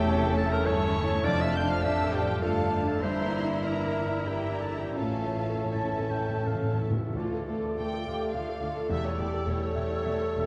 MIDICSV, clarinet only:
0, 0, Header, 1, 2, 480
1, 0, Start_track
1, 0, Key_signature, -1, "minor"
1, 0, Tempo, 578592
1, 1033, Time_signature, 3, 2, 24, 8
1, 1519, Tempo, 604839
1, 2959, Tempo, 632911
1, 3439, Tempo, 692841
1, 3919, Tempo, 737101
1, 4879, Tempo, 699301
1, 5359, Tempo, 628272
1, 5839, Tempo, 569801
1, 7759, Tempo, 660793
1, 8056, End_track
2, 0, Start_track
2, 0, Title_t, "Clarinet"
2, 0, Program_c, 0, 71
2, 0, Note_on_c, 0, 67, 105
2, 302, Note_off_c, 0, 67, 0
2, 307, Note_on_c, 0, 69, 107
2, 435, Note_on_c, 0, 70, 94
2, 448, Note_off_c, 0, 69, 0
2, 545, Note_on_c, 0, 73, 107
2, 557, Note_off_c, 0, 70, 0
2, 1034, Note_on_c, 0, 74, 108
2, 1046, Note_off_c, 0, 73, 0
2, 1172, Note_on_c, 0, 76, 97
2, 1184, Note_off_c, 0, 74, 0
2, 1298, Note_on_c, 0, 79, 86
2, 1310, Note_off_c, 0, 76, 0
2, 1404, Note_off_c, 0, 79, 0
2, 1409, Note_on_c, 0, 77, 82
2, 1522, Note_off_c, 0, 77, 0
2, 1532, Note_on_c, 0, 76, 91
2, 1764, Note_on_c, 0, 67, 97
2, 1775, Note_off_c, 0, 76, 0
2, 1993, Note_on_c, 0, 65, 76
2, 2005, Note_off_c, 0, 67, 0
2, 2341, Note_off_c, 0, 65, 0
2, 2345, Note_on_c, 0, 69, 80
2, 2463, Note_on_c, 0, 72, 96
2, 2475, Note_off_c, 0, 69, 0
2, 2782, Note_off_c, 0, 72, 0
2, 2941, Note_on_c, 0, 70, 67
2, 3431, Note_on_c, 0, 67, 73
2, 3442, Note_off_c, 0, 70, 0
2, 3666, Note_on_c, 0, 69, 65
2, 3676, Note_off_c, 0, 67, 0
2, 3791, Note_on_c, 0, 67, 62
2, 3802, Note_off_c, 0, 69, 0
2, 3919, Note_on_c, 0, 65, 73
2, 3929, Note_off_c, 0, 67, 0
2, 4409, Note_on_c, 0, 64, 52
2, 4419, Note_off_c, 0, 65, 0
2, 4880, Note_off_c, 0, 64, 0
2, 5373, Note_on_c, 0, 74, 48
2, 6763, Note_off_c, 0, 74, 0
2, 6799, Note_on_c, 0, 69, 53
2, 8056, Note_off_c, 0, 69, 0
2, 8056, End_track
0, 0, End_of_file